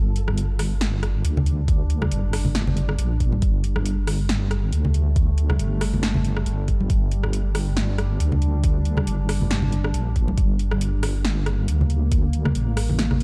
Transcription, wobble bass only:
Already playing: G1
1.25 D2
2.12 G1
2.99 A#1
3.42 G1
4.73 D2
5.60 G1
6.46 G1
6.90 G1
8.20 D2
9.07 G1
9.94 A#1
10.38 G1
11.68 D2
12.55 A1

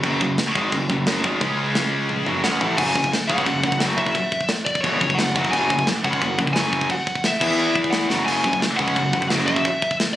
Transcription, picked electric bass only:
0.03 F#1
0.21 F#1
0.55 G#1
0.73 F#1
0.89 F#1
1.06 F#1
1.24 G#1
1.41 C#2
2.27 F#1
2.43 C#2
2.61 A1
2.78 F#1
2.96 F#1
3.12 muted picked electric bass stroke
3.29 C#2
3.47 F#1
3.63 F#1
3.80 F#1
4.84 E1
5.01 F#1
5.18 F#1
5.35 F#1
5.53 F#1
5.70 F#1
5.88 muted picked electric bass stroke
6.04 C#2
6.21 F#1
6.39 F#1
6.56 F#1
7.41 E2
8.10 F#1
8.27 F#1
8.44 F#1
8.62 muted picked electric bass stroke
8.79 C#2
8.97 F#1
9.13 F#1
9.31 F#1

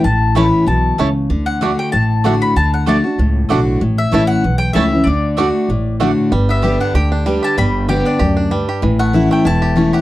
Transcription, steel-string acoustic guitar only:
0.04 A2
0.35 E3 A3 C#4 E4
0.67 B2
0.98 C#3
1.30 D3
1.61 D3 A3 D4 F#4
1.93 A2
2.24 D3 A3 D4 F#4
2.56 D3
2.87 D3 A3 D4 F#4
3.04 D4 F#4
3.19 A2
3.50 D3 A3 D4 F#4
3.81 A2
4.12 E3 A3 C#4 E4
4.44 E2
4.75 E3 A3 C#4 E4
4.92 C#4 E4
5.07 D3
5.37 D3 A3 D4 F#4
5.70 A2
6.00 D3 A3 D4 F#4
6.32 G2
6.62 D3 G3 B3 G4
6.95 D3
7.26 D3 G3 B3 G4
7.58 G2
7.88 D3 G3 B3 G4
8.20 F#2
8.51 G2
8.82 A2
9.13 E3 A3 C#4 E4
9.45 E2
9.76 E3 A3 C#4 E4

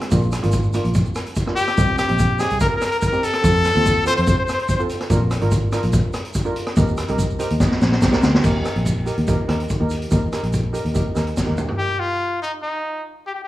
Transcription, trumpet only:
1.56 G4
1.99 G4
2.40 G#4
2.61 A#4
2.69 A#4
2.76 A#4
2.85 A#4
2.91 A#4
2.99 A#4
3.07 A#4
3.24 A4
4.07 C5
4.16 C5
4.22 C5
4.29 C5
4.38 C5
4.45 C5
4.53 C5
4.62 C5
4.69 C5
4.76 C5
11.78 G4
12.00 F4
12.42 D#4
12.63 D#4
13.27 G4
13.35 G4
13.44 G4

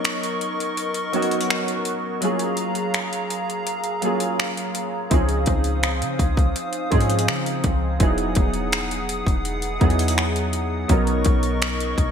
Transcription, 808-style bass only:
5.11 C#2
5.47 C#2
6.02 C#3
6.19 C#2
6.92 G#2
7.28 C#3
7.64 C#2
8.00 E1
8.37 E1
9.27 E1
9.81 E2
10.90 B1
11.26 B1
11.98 B1

